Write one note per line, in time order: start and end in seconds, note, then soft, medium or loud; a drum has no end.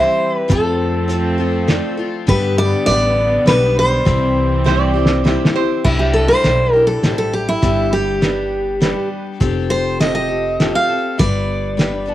0.00 0.46 E3 medium
0.00 0.46 G3 medium
0.00 0.48 G3 medium
0.00 0.47 C4 medium
0.00 0.48 C4 medium
0.00 0.30 E4 medium
0.00 0.49 E4 medium
0.00 0.30 G4 medium
0.00 0.49 G4 medium
0.00 0.31 C5 medium
0.00 0.34 C5 medium
0.34 0.51 B4 medium
0.48 1.79 F2 medium
0.48 1.07 F3 medium
0.48 2.26 F3 medium
0.48 2.27 A3 medium
0.48 1.08 C4 medium
0.48 2.26 C4 medium
0.48 1.09 F4 medium
0.48 1.09 A4 medium
0.48 1.66 A4 medium
0.48 kick loud
0.48 closed hi-hat medium
1.08 1.38 F3 medium
1.08 1.39 C4 medium
1.08 1.49 F4 medium
1.08 1.38 F4 medium
1.08 1.49 A4 medium
1.08 1.37 A4 medium
1.08 1.50 C5 medium
1.08 closed hi-hat medium
1.38 1.67 C4 soft
1.38 1.68 F4 medium
1.38 1.68 A4 medium
1.67 1.98 F3 medium
1.67 1.98 C4 medium
1.67 2.09 F4 medium
1.67 1.98 F4 medium
1.67 2.09 A4 medium
1.67 1.96 A4 medium
1.67 2.09 D5 medium
1.67 snare medium
1.67 closed hi-hat medium
1.97 2.28 C4 medium
1.97 2.28 F4 medium
1.97 2.28 A4 medium
2.26 2.87 G2 medium
2.26 2.71 G2 loud
2.26 2.87 D3 medium
2.26 4.04 D3 medium
2.26 2.86 G3 medium
2.26 5.81 G3 medium
2.26 4.04 B3 medium
2.26 2.86 B3 medium
2.26 2.88 D4 medium
2.26 2.90 G4 medium
2.26 2.58 B4 loud
2.26 kick loud
2.26 closed hi-hat medium
2.58 2.85 D5 loud
2.86 3.38 A1 loud
2.86 3.45 G3 medium
2.86 3.46 B3 medium
2.86 3.28 D4 medium
2.86 3.47 D4 medium
2.86 3.28 G4 medium
2.86 3.28 B4 medium
2.86 3.47 D5 loud
2.86 closed hi-hat medium
2.90 3.49 G4 medium
3.46 3.97 B1 medium
3.46 4.06 G3 medium
3.46 4.06 B3 medium
3.46 3.87 D4 medium
3.46 4.07 D4 medium
3.46 3.87 G4 medium
3.46 4.07 G4 medium
3.46 3.87 B4 medium
3.46 3.78 B4 medium
3.46 snare medium
3.46 closed hi-hat medium
3.79 5.22 C5 medium
4.04 5.35 C2 loud
4.04 4.65 C3 medium
4.04 5.81 E3 medium
4.04 4.63 G3 medium
4.04 5.82 C4 medium
4.04 4.64 C4 medium
4.04 4.65 E4 medium
4.04 4.66 G4 medium
4.04 kick loud
4.04 closed hi-hat medium
4.64 4.95 G3 medium
4.64 4.95 C4 medium
4.64 5.06 E4 medium
4.64 4.94 E4 medium
4.64 5.06 G4 medium
4.64 4.92 G4 medium
4.64 4.80 C5 loud
4.64 5.06 C5 medium
4.64 snare medium
4.80 5.52 D5 medium
4.94 5.24 C4 soft
4.94 5.25 E4 soft
4.94 5.24 G4 medium
5.06 snare medium
5.24 5.54 G3 medium
5.24 5.55 C4 medium
5.24 5.66 E4 medium
5.24 5.55 E4 medium
5.24 5.66 G4 medium
5.24 5.53 G4 medium
5.24 5.66 C5 medium
5.24 snare medium
5.45 snare loud
5.54 5.85 C4 soft
5.54 5.85 E4 medium
5.54 5.84 G4 medium
5.54 5.84 C5 medium
5.84 6.28 C2 medium
5.84 6.44 C3 medium
5.84 6.43 G3 medium
5.84 6.44 D4 medium
5.84 5.99 E4 medium
5.84 6.44 E4 medium
5.84 6.45 G4 medium
5.84 kick loud
5.84 crash loud
5.99 6.13 G4 medium
6.14 6.28 A4 medium
6.28 6.71 C5 medium
6.43 6.94 B1 medium
6.43 6.73 G3 medium
6.43 6.74 D4 medium
6.43 6.85 D4 medium
6.43 6.85 E4 medium
6.43 6.74 E4 medium
6.43 6.72 G4 medium
6.43 6.85 C5 medium
6.43 snare medium
6.43 closed hi-hat medium
6.71 7.03 G4 soft
6.71 6.86 A#4 medium
6.75 7.03 D4 soft
6.75 7.04 E4 soft
6.87 7.17 A4 medium
7.03 7.54 A1 medium
7.03 7.63 G3 medium
7.03 7.44 D4 medium
7.03 7.63 D4 medium
7.03 7.44 E4 medium
7.03 7.63 E4 medium
7.03 7.64 G4 medium
7.03 7.44 C5 medium
7.03 snare medium
7.03 closed hi-hat medium
7.18 7.33 A4 medium
7.33 7.48 G4 medium
7.49 7.92 E4 medium
7.62 8.92 G1 medium
7.62 8.22 G2 medium
7.62 8.22 D3 medium
7.62 8.21 G3 medium
7.62 8.21 B3 medium
7.62 8.22 D4 medium
7.62 8.24 G4 medium
7.62 kick loud
7.62 closed hi-hat medium
7.93 9.08 G4 medium
8.21 8.80 G3 medium
8.21 8.80 B3 medium
8.21 8.63 D4 medium
8.21 8.81 D4 medium
8.21 8.63 G4 medium
8.21 8.83 G4 medium
8.21 8.63 B4 medium
8.21 snare medium
8.21 closed hi-hat medium
8.80 9.40 G3 medium
8.80 9.41 B3 medium
8.80 9.22 D4 medium
8.80 9.41 D4 medium
8.80 9.22 G4 medium
8.80 9.42 G4 medium
8.80 9.23 B4 medium
8.80 snare medium
8.80 closed hi-hat medium
9.40 10.70 F1 medium
9.40 9.98 F3 medium
9.40 10.00 C4 medium
9.40 10.02 G4 medium
9.40 10.01 A4 loud
9.40 kick loud
9.40 closed hi-hat medium
9.70 9.99 C5 medium
9.99 10.30 F3 medium
9.99 10.30 C4 medium
9.99 10.41 F4 medium
9.99 10.41 G4 medium
9.99 10.29 G4 medium
9.99 10.41 A4 medium
9.99 10.27 A4 medium
9.99 10.14 D#5 medium
9.99 snare medium
9.99 closed hi-hat medium
10.15 10.73 D#5 medium
10.29 10.60 C4 soft
10.29 10.60 G4 soft
10.29 10.59 A4 soft
10.60 10.89 F3 medium
10.60 10.90 C4 medium
10.60 11.00 F4 medium
10.60 11.00 G4 medium
10.60 10.89 G4 medium
10.60 11.01 A4 medium
10.60 10.88 A4 medium
10.60 snare medium
10.60 closed hi-hat medium
10.75 11.18 F5 medium
10.89 11.19 C4 soft
10.89 11.19 G4 soft
10.89 11.19 A4 medium
11.18 12.14 G1 medium
11.18 11.78 G2 medium
11.18 11.78 D3 medium
11.18 11.77 G3 medium
11.18 11.77 B3 medium
11.18 11.78 D4 medium
11.18 11.79 B4 medium
11.18 12.14 D5 medium
11.18 kick loud
11.18 closed hi-hat medium
11.77 12.08 G3 medium
11.77 12.07 B3 medium
11.77 12.06 D4 medium
11.77 12.14 D4 medium
11.77 12.14 G4 medium
11.77 12.14 B4 medium
11.77 12.04 B4 medium
11.77 snare medium
11.77 closed hi-hat medium
12.06 12.14 G3 soft
12.06 12.14 B3 soft
12.06 12.14 D4 medium
12.06 12.14 B4 medium
12.06 12.14 A5 medium